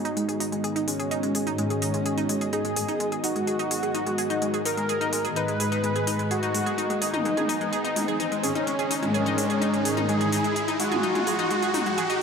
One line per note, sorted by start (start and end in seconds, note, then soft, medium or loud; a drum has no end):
0.00 12.22 G#2 medium
0.00 12.22 D#3 medium
0.00 12.22 G#3 medium
0.00 12.22 B3 medium
0.00 0.78 D#4 loud
0.00 12.22 F#4 medium
0.00 0.13 C#5 medium
0.00 12.22 D#5 medium
0.00 riser medium
0.05 0.12 D#4 loud
0.05 closed hi-hat soft
0.17 0.24 G#3 medium
0.17 closed hi-hat medium
0.29 0.33 G#4 medium
0.29 closed hi-hat soft
0.40 0.47 D#4 loud
0.40 open hi-hat loud
0.52 0.59 G#3 medium
0.52 closed hi-hat soft
0.64 0.68 G#4 medium
0.64 closed hi-hat medium
0.76 0.83 D#4 loud
0.76 closed hi-hat soft
0.88 0.94 G#2 medium
0.88 0.94 D#3 medium
0.88 0.94 G#3 medium
0.88 1.49 C#4 medium
0.88 open hi-hat loud
0.99 1.04 G#4 medium
0.99 closed hi-hat soft
1.11 1.18 D#4 loud
1.11 closed hi-hat medium
1.23 1.30 G#3 medium
1.23 closed hi-hat soft
1.35 1.39 G#4 medium
1.35 open hi-hat loud
1.47 2.74 G#2 medium
1.47 2.74 D#3 medium
1.47 2.74 G#3 loud
1.47 1.54 D#4 loud
1.47 closed hi-hat soft
1.58 1.65 G#3 medium
1.58 2.44 C#4 loud
1.58 closed hi-hat medium
1.70 1.74 G#4 medium
1.70 closed hi-hat soft
1.82 1.89 D#4 loud
1.82 open hi-hat loud
1.94 2.01 G#3 medium
1.94 closed hi-hat soft
2.06 2.10 G#4 medium
2.06 closed hi-hat medium
2.18 2.24 D#4 loud
2.18 closed hi-hat soft
2.29 2.36 G#3 medium
2.29 open hi-hat loud
2.41 2.45 G#4 medium
2.41 closed hi-hat soft
2.53 2.60 D#4 medium
2.53 3.14 G#4 loud
2.53 closed hi-hat medium
2.65 2.72 G#3 medium
2.65 closed hi-hat soft
2.76 2.83 G#2 medium
2.76 2.83 D#3 medium
2.76 2.83 G#3 loud
2.76 2.81 G#4 medium
2.76 open hi-hat loud
2.88 2.95 D#4 loud
2.88 closed hi-hat soft
3.00 3.07 G#3 medium
3.00 closed hi-hat medium
3.12 3.16 G#4 medium
3.12 closed hi-hat soft
3.24 3.31 D#4 loud
3.24 4.56 F#4 loud
3.24 open hi-hat loud
3.36 3.42 G#2 medium
3.36 3.42 D#3 medium
3.36 3.43 G#3 medium
3.36 3.42 G#3 loud
3.36 closed hi-hat soft
3.47 3.52 G#4 medium
3.47 closed hi-hat medium
3.59 3.66 D#4 loud
3.59 closed hi-hat soft
3.71 3.78 G#3 medium
3.71 open hi-hat loud
3.83 3.87 G#4 medium
3.83 closed hi-hat soft
3.95 4.02 D#4 loud
3.95 closed hi-hat medium
4.06 4.13 G#3 medium
4.06 closed hi-hat soft
4.18 4.22 G#4 medium
4.18 open hi-hat loud
4.30 4.37 D#4 loud
4.30 closed hi-hat soft
4.42 4.49 G#3 medium
4.42 closed hi-hat medium
4.54 4.58 G#4 medium
4.54 closed hi-hat soft
4.65 4.72 D#4 loud
4.65 5.27 A#4 loud
4.65 open hi-hat loud
4.77 4.84 G#3 medium
4.77 closed hi-hat soft
4.89 4.93 G#4 medium
4.89 closed hi-hat medium
5.01 5.08 D#4 loud
5.01 closed hi-hat soft
5.13 5.20 G#3 medium
5.13 open hi-hat loud
5.25 6.52 G#2 medium
5.25 6.52 D#3 medium
5.25 6.52 G#3 loud
5.25 5.29 G#4 medium
5.25 closed hi-hat soft
5.36 5.43 D#4 loud
5.36 6.22 B4 medium
5.36 closed hi-hat medium
5.48 5.55 G#3 medium
5.48 closed hi-hat soft
5.60 5.64 G#4 medium
5.60 open hi-hat loud
5.72 5.79 D#4 loud
5.72 closed hi-hat soft
5.84 5.91 G#3 medium
5.84 closed hi-hat medium
5.96 6.00 G#4 medium
5.96 closed hi-hat soft
6.07 6.14 D#4 loud
6.07 open hi-hat loud
6.19 6.26 G#3 medium
6.19 closed hi-hat soft
6.31 6.92 F#4 loud
6.31 6.35 G#4 medium
6.31 closed hi-hat medium
6.43 6.50 D#4 loud
6.43 closed hi-hat soft
6.54 6.61 G#2 medium
6.54 6.61 D#3 medium
6.54 6.61 G#3 medium
6.54 6.61 G#3 loud
6.54 open hi-hat loud
6.66 6.70 G#4 medium
6.66 closed hi-hat soft
6.78 6.85 D#4 loud
6.78 closed hi-hat medium
6.90 6.97 G#3 medium
6.90 closed hi-hat soft
7.02 8.34 D#4 loud
7.02 7.06 G#4 medium
7.02 open hi-hat loud
7.14 7.20 G#2 medium
7.14 7.20 D#3 medium
7.14 7.20 G#3 loud
7.14 7.20 D#4 loud
7.14 closed hi-hat soft
7.14 mid tom medium
7.25 7.32 G#3 medium
7.25 closed hi-hat medium
7.37 7.41 G#4 medium
7.37 closed hi-hat soft
7.37 mid tom medium
7.49 7.56 D#4 loud
7.49 open hi-hat loud
7.61 7.68 G#3 medium
7.61 closed hi-hat soft
7.73 7.77 G#4 medium
7.73 closed hi-hat medium
7.84 7.91 D#4 loud
7.84 closed hi-hat soft
7.96 8.03 G#3 medium
7.96 open hi-hat loud
7.96 mid tom medium
8.08 8.12 G#4 medium
8.08 closed hi-hat soft
8.20 8.27 D#4 loud
8.20 closed hi-hat medium
8.32 8.39 G#3 medium
8.32 closed hi-hat soft
8.43 8.50 G#2 medium
8.43 8.50 D#3 medium
8.43 8.50 G#3 medium
8.43 9.05 C#4 medium
8.43 8.48 G#4 medium
8.43 open hi-hat loud
8.55 8.62 D#4 loud
8.55 closed hi-hat soft
8.67 8.74 G#3 medium
8.67 closed hi-hat medium
8.79 8.83 G#4 medium
8.79 closed hi-hat soft
8.91 8.98 D#4 loud
8.91 open hi-hat loud
9.03 10.30 G#2 medium
9.03 10.30 D#3 medium
9.03 9.09 G#3 medium
9.03 10.30 G#3 loud
9.03 closed hi-hat soft
9.03 mid tom medium
9.14 9.99 C#4 loud
9.14 9.18 G#4 medium
9.14 closed hi-hat medium
9.26 9.33 D#4 loud
9.26 closed hi-hat soft
9.38 9.45 G#3 medium
9.38 open hi-hat loud
9.50 9.54 G#4 medium
9.50 closed hi-hat soft
9.61 9.68 D#4 loud
9.61 closed hi-hat medium
9.73 9.80 G#3 medium
9.73 closed hi-hat soft
9.85 9.89 G#4 medium
9.85 open hi-hat loud
9.97 10.04 D#4 loud
9.97 closed hi-hat soft
9.97 mid tom medium
10.09 10.16 G#3 medium
10.09 10.70 G#4 loud
10.09 closed hi-hat medium
10.21 10.25 G#4 medium
10.21 closed hi-hat soft
10.32 10.39 G#2 medium
10.32 10.39 D#3 medium
10.32 10.39 G#3 loud
10.32 10.39 D#4 loud
10.32 open hi-hat loud
10.44 10.51 G#3 medium
10.44 closed hi-hat soft
10.56 10.60 G#4 medium
10.56 closed hi-hat medium
10.68 10.75 D#4 loud
10.68 closed hi-hat soft
10.80 10.87 G#3 medium
10.80 12.12 F#4 loud
10.80 open hi-hat loud
10.92 10.98 G#2 medium
10.92 10.98 D#3 medium
10.92 10.98 G#3 loud
10.92 10.96 G#4 medium
10.92 closed hi-hat soft
10.92 mid tom loud
11.03 11.10 D#4 loud
11.03 closed hi-hat medium
11.15 11.22 G#3 medium
11.15 closed hi-hat soft
11.15 mid tom loud
11.27 11.31 G#4 medium
11.27 open hi-hat loud
11.39 11.46 D#4 loud
11.39 closed hi-hat soft
11.51 11.57 G#3 medium
11.51 closed hi-hat medium
11.62 11.67 G#4 medium
11.62 closed hi-hat soft
11.74 11.81 D#4 loud
11.74 open hi-hat loud
11.74 mid tom medium
11.86 11.93 G#3 medium
11.86 closed hi-hat soft
11.98 12.02 G#4 medium
11.98 closed hi-hat medium
12.10 12.16 D#4 loud
12.10 closed hi-hat soft